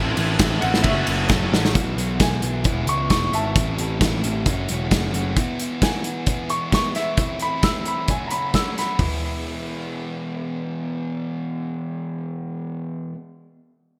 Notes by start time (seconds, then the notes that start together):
Already playing: A1 A2 E3 A3 C4 E4 A4 A5
0.17 A1 C4 E4 A4, ride
0.39 A1 A2 E3 A3 C4 E4 A4, kick, snare, clap, ride
0.61 A1 A3 C4 E4 A4 F#5, ride
0.74 snare
0.83 F#1 F#2 C#3 E5, kick, ride
0.87 F#3 A3 C#4 F#4 A4
1.07 F#1 A3 C#4 A4, ride
1.29 F#1 F#3 A3 C#4 F#4 A4, kick, snare, clap
1.53 A1 F#3 A3 C#4 F#4, snare
1.65 snare
1.75 B1 B2 E3 B3 E4 F#4, kick, closed hi-hat
1.97 B1 E4 F#4, closed hi-hat
2.01 B3
2.20 B1 E3 B3 E4 G#5, kick, snare, closed hi-hat
2.24 F#4
2.42 B1, closed hi-hat
2.64 E1 E2 B2 E3 G#3 B3 E4, kick, closed hi-hat
2.86 C#2 B3 E4 C#6, closed hi-hat
2.90 E3 G#3
3.10 E1 E3 G#3 B3 E4 C#6, kick, snare, closed hi-hat
3.32 G#1 E3 G#3 B3 E4 E5 A5, closed hi-hat
3.55 A1 A2 E3 A3 C4, kick, closed hi-hat
3.59 E4
3.78 A1 A3 C4 E4, closed hi-hat
4.00 A1 E3 A3 C4 E4, kick, snare, closed hi-hat
4.24 A1, closed hi-hat
4.46 F#1 F#2 C#3 F#3 A3 C#4, kick, closed hi-hat
4.50 F#4
4.69 E1 F#3 A3 C#4 F#4, closed hi-hat
4.91 F#1 F#3 A3 C#4 F#4, kick, snare, closed hi-hat
5.12 F#1 F#3 A3 C#4 F#4, closed hi-hat
5.36 B2 E3 B3 E4 F#4, kick, closed hi-hat
5.59 B3 E4 F#4, closed hi-hat
5.81 E3 B3 E4 F#4 G#5, kick, snare, closed hi-hat
6.04 closed hi-hat
6.26 E2 B2 E3 G#3 B3 E4, kick, closed hi-hat
6.49 E3 G#3 B3 E4 C#6, closed hi-hat
6.71 E3 G#3 B3 E4 C#6, kick, snare, closed hi-hat
6.95 E3 G#3 B3 E4 E5, snare, closed hi-hat
7.17 A2 E3 A3 C4 E4, kick, closed hi-hat
7.39 C4 E4 B5, closed hi-hat
7.44 A3
7.62 E3 A3 C4 E6, kick, snare, closed hi-hat
7.66 E4
7.86 B5, closed hi-hat
8.08 F#2 C#3 F#3 A3 C#4 G#5, kick, closed hi-hat
8.13 F#4
8.28 A#5 B5, closed hi-hat
8.32 F#3 A3 C#4 F#4
8.54 F#3 A3 C#4 F#4 E6, kick, snare, closed hi-hat
8.77 F#3 A3 C#4 F#4 B5, snare, closed hi-hat
8.99 E2 B2 E3 G#3 B3 E4, kick, floor tom, open hi-hat